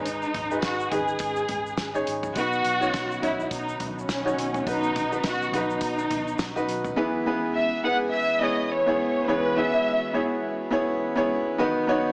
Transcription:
Already playing: picked electric bass G#1, upright piano G#2 D#4 G#4 B4
0.04 violin section D#4, closed hi-hat, shaker
0.22 shaker
0.34 picked electric bass G#1, closed hi-hat, floor tom
0.50 upright piano D#4 G#4 B4, shaker
0.62 picked electric bass G#1, violin section F#4, kick, snare, closed hi-hat, shaker
0.80 shaker
0.91 picked electric bass G#1, upright piano D#4 G#4 B4, violin section G#4, closed hi-hat, floor tom, shaker
1.08 shaker
1.19 picked electric bass G#1, kick, closed hi-hat, shaker
1.36 shaker
1.49 picked electric bass G#1, closed hi-hat, floor tom
1.66 shaker
1.78 picked electric bass G#1, kick, snare, closed hi-hat, shaker
1.94 upright piano D#4 G#4 C#5, shaker
2.07 picked electric bass G#1, closed hi-hat
2.23 floor tom, shaker
2.36 picked electric bass B1, upright piano B2 D#4 F#4 B4, analog synth pad D#3 F#3 B3 F#4, violin section F#4, kick, closed hi-hat, shaker
2.53 shaker
2.65 picked electric bass B1, closed hi-hat
2.80 upright piano D#4 F#4 C#5, shaker
2.94 picked electric bass B1, kick, snare, closed hi-hat, shaker
3.11 shaker
3.21 picked electric bass B1, upright piano D#4 F#4 C#5, violin section E4, closed hi-hat, floor tom, shaker
3.40 shaker
3.51 picked electric bass B1, violin section D#4, kick, closed hi-hat, shaker
3.69 shaker
3.80 picked electric bass B1, closed hi-hat, floor tom
3.90 violin section D#4
3.99 violin section C#4, shaker
4.09 picked electric bass B1, kick, snare, closed hi-hat, shaker
4.24 upright piano D#4 F#4 C#5, shaker
4.37 picked electric bass B1, closed hi-hat
4.54 floor tom, shaker
4.67 picked electric bass B1, upright piano B2 D#4 F#4 B4, violin section D#4, kick, closed hi-hat, shaker
4.83 shaker
4.94 picked electric bass B1, closed hi-hat, floor tom, shaker
5.11 upright piano D#4 F#4 B4, shaker
5.24 picked electric bass B1, violin section F#4, kick, snare, closed hi-hat, shaker
5.42 shaker
5.52 picked electric bass B1, upright piano D#4 F#4 B4, violin section D#4, closed hi-hat, floor tom, shaker
5.70 shaker
5.81 picked electric bass B1, kick, closed hi-hat, shaker
5.98 shaker
6.10 picked electric bass B1, closed hi-hat, floor tom, shaker
6.28 shaker
6.38 picked electric bass B1, kick, snare, closed hi-hat, shaker
6.55 upright piano D#4 F#4 B4, shaker
6.68 picked electric bass B1, closed hi-hat, shaker
6.85 floor tom, shaker
6.96 upright piano E3 B3 E4 G#4 B4, analog synth pad E3 G#3 B3 G#4
7.26 upright piano B3 E4 G#4 B4
7.56 violin section E5
7.84 upright piano B3 E4 G#4 B4, violin section F#5
8.14 violin section E5
8.41 upright piano B3 E4 G#4 C#5, violin section D#5
8.72 violin section C#5
8.86 upright piano B3 E4 G#4 C#5
9.28 upright piano E3 B3 E4 G#4 C#5, analog synth pad F#4, violin section B4
9.56 upright piano B3 E4 G#4 B4, violin section E5
10.13 upright piano B3 E4 G#4 C#5
10.71 upright piano B3 E4 G#4 C#5
11.16 upright piano B3 E4 G#4 C#5
11.57 analog synth pad D#3 F#3, upright piano D#3 B3 D#4 F#4 B4
11.87 upright piano B3 D#4 F#4 C#5

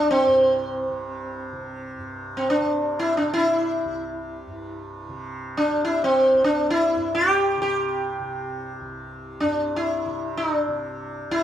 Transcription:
Already playing: tanpura C2 G2 C3, sitar D4
0.11 sitar C4
0.26 tanpura G2
0.88 tanpura C3
1.52 tanpura C3
1.98 tanpura G2
2.37 sitar C4
2.50 sitar D4
2.61 tanpura C3
2.99 sitar E4
3.17 sitar D4
3.22 tanpura C3
3.34 sitar E4
3.84 tanpura C2
4.47 tanpura G2
5.09 tanpura C3
5.57 sitar D4
5.71 tanpura C3
5.85 sitar E4
6.04 sitar C4
6.33 tanpura C2
6.44 sitar D4
6.70 sitar E4
6.96 tanpura G2
7.15 sitar G4
7.57 tanpura C3
7.62 sitar G4
8.20 tanpura C3
8.80 tanpura C2
9.40 tanpura G2, sitar D4
9.76 sitar E4
10.05 tanpura C3
10.37 sitar D#4
10.52 sitar D4
10.68 tanpura C3
11.29 tanpura C2, sitar E4

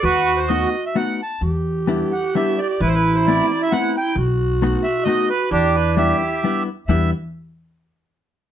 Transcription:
0.03 upright bass D#2, clarinet F#4, accordion F#4 B4
0.37 accordion C5
0.48 hollow-body jazz guitar A3 B3 D#4, accordion D#5
0.52 hollow-body jazz guitar F#4
0.86 accordion E5
0.95 hollow-body jazz guitar A3 B3 D#4 F#4, accordion F#5
1.22 accordion A5
1.41 upright bass E2, clarinet G4
1.87 hollow-body jazz guitar G3 B3 D4 E4
2.12 accordion F#5
2.35 hollow-body jazz guitar G3 B3 D4 E4, accordion E5
2.58 accordion D5
2.69 accordion D5
2.81 upright bass A1, clarinet E4, accordion E4 B4
2.87 accordion C5
2.95 accordion B4
3.15 accordion C5
3.27 hollow-body jazz guitar A3 B3 C4 E4, accordion D5
3.63 accordion E5
3.72 hollow-body jazz guitar A3 B3 C4 E4, accordion F#5
3.98 accordion G5
4.16 upright bass B1, clarinet F#4
4.62 hollow-body jazz guitar A3 B3 D#4 F#4
4.83 accordion E5
5.04 hollow-body jazz guitar A3, accordion D#5
5.08 hollow-body jazz guitar B3 D#4 F#4
5.30 accordion B4
5.51 upright bass E2, accordion D4 G4, clarinet E4
5.75 accordion B4
5.97 hollow-body jazz guitar G3 B3 D4 E4, accordion G4 E5
6.44 hollow-body jazz guitar G3 B3 D4 E4
6.87 upright bass E2, hollow-body jazz guitar G3 B3 D4 E4, clarinet G4, accordion E5

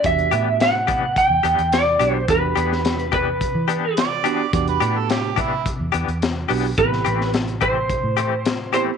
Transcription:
0.04 fingered electric bass E2, tine electric piano B3 D4 F#4 G4, electric slide guitar E5, kick, closed hi-hat
0.19 closed hi-hat
0.31 fingered electric bass A2, clean electric guitar E3 B3 D4 G4, closed hi-hat
0.60 electric slide guitar F#5, snare, closed hi-hat
0.87 clean electric guitar E3 B3 D4 G4, kick, closed hi-hat
1.16 electric slide guitar G5, kick, closed hi-hat
1.30 fingered electric bass E2
1.43 fingered electric bass E2, clean electric guitar E3 B3 D4 G4, closed hi-hat
1.59 fingered electric bass E2, closed hi-hat
1.72 electric slide guitar D5, snare, closed hi-hat
2.00 fingered electric bass B1, clean electric guitar E3 B3 D4 G4, tine electric piano B3 D4 F#4 G4, closed hi-hat
2.13 electric slide guitar C5
2.28 fingered electric bass E2, tine electric piano B3 D4 F#4 G4, electric slide guitar B4, kick, closed hi-hat
2.56 fingered electric bass E2, clean electric guitar E3 B3 D4 G4, closed hi-hat
2.72 snare
2.85 snare, closed hi-hat
2.99 closed hi-hat
3.12 clean electric guitar E3 B3 D4 G4, electric slide guitar B4, kick, closed hi-hat
3.41 kick, closed hi-hat
3.55 fingered electric bass E3
3.68 clean electric guitar E3 B3 D4 G4, closed hi-hat
3.97 harmonica D5, snare, closed hi-hat
4.24 clean electric guitar E3 B3 D4 G4, tine electric piano B3 D4 F#4 G4, closed hi-hat
4.53 fingered electric bass E2, tine electric piano B3 D4 F#4 G4, harmonica D5, kick, closed hi-hat
4.67 harmonica B4, closed hi-hat
4.80 fingered electric bass A2, clean electric guitar E3 B3 D4 G4, closed hi-hat
4.97 harmonica A4
5.10 harmonica G4, snare, closed hi-hat
5.36 clean electric guitar E3 B3 D4 G4, harmonica E4, kick, closed hi-hat
5.66 kick, closed hi-hat
5.80 fingered electric bass E2
5.92 fingered electric bass E2, clean electric guitar E3 B3 D4 G4, closed hi-hat
6.08 fingered electric bass E2, closed hi-hat
6.22 snare, closed hi-hat
6.49 fingered electric bass B1, clean electric guitar E3 B3 D4 G4, tine electric piano B3 D4 F#4 G4, open hi-hat
6.78 fingered electric bass A1, tine electric piano B3 C4 E4 G4, electric slide guitar B4, kick, closed hi-hat
6.93 snare
7.05 fingered electric bass A1, clean electric guitar E3 A3 C4 G4, closed hi-hat
7.21 snare
7.34 snare, closed hi-hat
7.48 closed hi-hat
7.61 clean electric guitar E3 A3 C4 G4, electric slide guitar C5, kick, closed hi-hat
7.89 kick, closed hi-hat
8.04 fingered electric bass A2
8.17 clean electric guitar E3 A3 C4 G4, closed hi-hat
8.45 snare, closed hi-hat
8.73 clean electric guitar E3 A3 C4 G4, tine electric piano B3 C4 E4 G4, electric slide guitar C5, closed hi-hat

